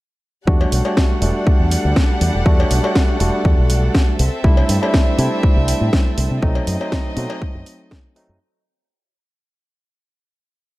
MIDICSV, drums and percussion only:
0, 0, Header, 1, 2, 480
1, 0, Start_track
1, 0, Key_signature, 1, "minor"
1, 0, Tempo, 495868
1, 460, Time_signature, 4, 2, 24, 8
1, 10444, End_track
2, 0, Start_track
2, 0, Title_t, "Drums"
2, 459, Note_on_c, 9, 36, 104
2, 556, Note_off_c, 9, 36, 0
2, 588, Note_on_c, 9, 56, 55
2, 685, Note_off_c, 9, 56, 0
2, 699, Note_on_c, 9, 46, 96
2, 796, Note_off_c, 9, 46, 0
2, 823, Note_on_c, 9, 56, 60
2, 920, Note_off_c, 9, 56, 0
2, 939, Note_on_c, 9, 36, 93
2, 942, Note_on_c, 9, 38, 114
2, 1036, Note_off_c, 9, 36, 0
2, 1039, Note_off_c, 9, 38, 0
2, 1179, Note_on_c, 9, 46, 78
2, 1276, Note_off_c, 9, 46, 0
2, 1420, Note_on_c, 9, 36, 105
2, 1516, Note_off_c, 9, 36, 0
2, 1659, Note_on_c, 9, 46, 97
2, 1756, Note_off_c, 9, 46, 0
2, 1900, Note_on_c, 9, 36, 101
2, 1903, Note_on_c, 9, 38, 112
2, 1996, Note_off_c, 9, 36, 0
2, 2000, Note_off_c, 9, 38, 0
2, 2141, Note_on_c, 9, 46, 85
2, 2237, Note_off_c, 9, 46, 0
2, 2380, Note_on_c, 9, 36, 114
2, 2476, Note_off_c, 9, 36, 0
2, 2516, Note_on_c, 9, 56, 58
2, 2612, Note_off_c, 9, 56, 0
2, 2621, Note_on_c, 9, 46, 99
2, 2717, Note_off_c, 9, 46, 0
2, 2750, Note_on_c, 9, 56, 60
2, 2846, Note_off_c, 9, 56, 0
2, 2860, Note_on_c, 9, 36, 99
2, 2862, Note_on_c, 9, 38, 112
2, 2956, Note_off_c, 9, 36, 0
2, 2959, Note_off_c, 9, 38, 0
2, 3100, Note_on_c, 9, 46, 84
2, 3197, Note_off_c, 9, 46, 0
2, 3339, Note_on_c, 9, 36, 109
2, 3436, Note_off_c, 9, 36, 0
2, 3579, Note_on_c, 9, 46, 104
2, 3676, Note_off_c, 9, 46, 0
2, 3819, Note_on_c, 9, 36, 106
2, 3822, Note_on_c, 9, 38, 115
2, 3916, Note_off_c, 9, 36, 0
2, 3919, Note_off_c, 9, 38, 0
2, 4059, Note_on_c, 9, 46, 90
2, 4156, Note_off_c, 9, 46, 0
2, 4299, Note_on_c, 9, 36, 118
2, 4396, Note_off_c, 9, 36, 0
2, 4426, Note_on_c, 9, 56, 59
2, 4523, Note_off_c, 9, 56, 0
2, 4540, Note_on_c, 9, 46, 105
2, 4637, Note_off_c, 9, 46, 0
2, 4674, Note_on_c, 9, 56, 63
2, 4770, Note_off_c, 9, 56, 0
2, 4780, Note_on_c, 9, 36, 103
2, 4783, Note_on_c, 9, 38, 112
2, 4876, Note_off_c, 9, 36, 0
2, 4879, Note_off_c, 9, 38, 0
2, 5020, Note_on_c, 9, 46, 86
2, 5117, Note_off_c, 9, 46, 0
2, 5260, Note_on_c, 9, 36, 117
2, 5356, Note_off_c, 9, 36, 0
2, 5499, Note_on_c, 9, 46, 107
2, 5596, Note_off_c, 9, 46, 0
2, 5739, Note_on_c, 9, 36, 109
2, 5742, Note_on_c, 9, 38, 112
2, 5836, Note_off_c, 9, 36, 0
2, 5838, Note_off_c, 9, 38, 0
2, 5979, Note_on_c, 9, 46, 96
2, 6076, Note_off_c, 9, 46, 0
2, 6219, Note_on_c, 9, 36, 114
2, 6316, Note_off_c, 9, 36, 0
2, 6344, Note_on_c, 9, 56, 61
2, 6440, Note_off_c, 9, 56, 0
2, 6459, Note_on_c, 9, 46, 106
2, 6555, Note_off_c, 9, 46, 0
2, 6591, Note_on_c, 9, 56, 68
2, 6687, Note_off_c, 9, 56, 0
2, 6699, Note_on_c, 9, 36, 99
2, 6700, Note_on_c, 9, 38, 111
2, 6796, Note_off_c, 9, 36, 0
2, 6797, Note_off_c, 9, 38, 0
2, 6937, Note_on_c, 9, 46, 89
2, 7034, Note_off_c, 9, 46, 0
2, 7064, Note_on_c, 9, 56, 87
2, 7161, Note_off_c, 9, 56, 0
2, 7179, Note_on_c, 9, 36, 120
2, 7276, Note_off_c, 9, 36, 0
2, 7418, Note_on_c, 9, 46, 108
2, 7515, Note_off_c, 9, 46, 0
2, 7659, Note_on_c, 9, 36, 108
2, 7664, Note_on_c, 9, 38, 111
2, 7756, Note_off_c, 9, 36, 0
2, 7760, Note_off_c, 9, 38, 0
2, 7901, Note_on_c, 9, 46, 92
2, 7998, Note_off_c, 9, 46, 0
2, 10444, End_track
0, 0, End_of_file